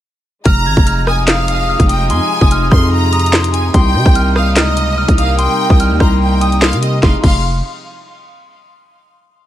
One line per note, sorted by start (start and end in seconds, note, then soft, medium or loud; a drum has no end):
0.45 0.68 F1 loud
0.45 6.99 C3 medium
0.45 3.71 F3 medium
0.45 3.71 G#3 medium
0.45 3.71 D#4 medium
0.45 1.03 A#5 loud
0.45 0.86 F6 medium
0.45 kick loud
0.45 closed hi-hat medium
0.66 0.76 G#1 loud
0.66 1.71 G#6 medium
0.77 1.76 F1 loud
0.77 kick loud
0.86 1.27 F6 medium
0.86 closed hi-hat medium
1.07 1.27 G#5 medium
1.07 1.48 D#6 medium
1.07 cross-stick medium
1.28 1.86 F5 medium
1.28 1.68 F6 medium
1.28 snare loud
1.28 clap medium
1.28 closed hi-hat medium
1.48 1.89 D#6 medium
1.48 closed hi-hat medium
1.69 2.51 F6 medium
1.80 2.11 F1 loud
1.80 kick medium
1.80 closed hi-hat medium
1.89 2.09 G5 medium
1.89 2.41 D#6 medium
1.89 closed hi-hat medium
2.10 2.20 F2 loud
2.10 2.68 G#5 loud
2.10 2.71 C6 loud
2.10 closed hi-hat medium
2.41 2.70 F1 loud
2.41 3.12 D#6 medium
2.41 kick loud
2.51 3.61 F6 medium
2.51 closed hi-hat medium
2.71 3.70 F2 loud
2.71 2.91 C6 medium
2.71 3.33 C6 medium
2.71 kick loud
2.71 cross-stick medium
2.92 3.50 A#5 loud
3.13 4.30 D#6 medium
3.13 closed hi-hat medium
3.19 closed hi-hat medium
3.26 closed hi-hat medium
3.33 3.74 C6 medium
3.33 snare loud
3.33 clap loud
3.44 closed hi-hat medium
3.54 3.73 G#5 medium
3.54 closed hi-hat medium
3.74 3.96 C2 loud
3.74 7.00 G3 medium
3.74 7.00 A#3 medium
3.74 7.00 D#4 medium
3.74 4.32 G5 loud
3.74 5.05 C6 medium
3.74 kick loud
3.74 closed hi-hat medium
3.95 4.05 C3 loud
3.95 5.00 G6 medium
4.06 4.58 C2 loud
4.06 kick loud
4.15 4.56 F6 medium
4.15 closed hi-hat medium
4.36 4.55 F5 medium
4.36 4.76 D#6 medium
4.36 cross-stick medium
4.56 5.06 C#2 loud
4.56 5.14 D#5 medium
4.56 4.97 F6 medium
4.56 snare loud
4.56 clap loud
4.56 closed hi-hat medium
4.76 5.18 D#6 medium
4.76 closed hi-hat medium
4.97 5.79 F6 medium
5.08 5.48 C2 loud
5.08 kick medium
5.08 closed hi-hat medium
5.18 5.38 F5 medium
5.18 5.69 D#6 medium
5.18 closed hi-hat medium
5.38 5.96 G5 loud
5.38 5.68 C6 medium
5.38 closed hi-hat medium
5.70 5.92 C2 loud
5.70 5.79 D#6 medium
5.70 kick loud
5.80 5.98 F6 medium
5.80 closed hi-hat medium
5.91 6.00 D#2 loud
6.00 6.74 C2 loud
6.00 6.20 A#5 medium
6.00 6.39 C6 medium
6.00 kick loud
6.00 cross-stick medium
6.21 6.59 G5 medium
6.41 6.60 D#6 medium
6.41 closed hi-hat medium
6.52 closed hi-hat soft
6.61 6.81 F5 loud
6.61 6.80 C6 medium
6.61 snare loud
6.61 clap loud
6.73 7.02 C3 loud
6.73 closed hi-hat medium
6.83 7.02 D#5 medium
6.83 closed hi-hat medium
7.03 7.15 F1 loud
7.03 7.22 C3 medium
7.03 7.22 F3 medium
7.03 7.22 G#3 medium
7.03 7.22 D#4 medium
7.03 7.15 F5 medium
7.03 7.15 C6 medium
7.03 kick loud
7.03 snare medium
7.23 7.62 F1 loud
7.23 7.43 F5 medium
7.23 7.43 C6 medium
7.23 kick loud
7.23 crash medium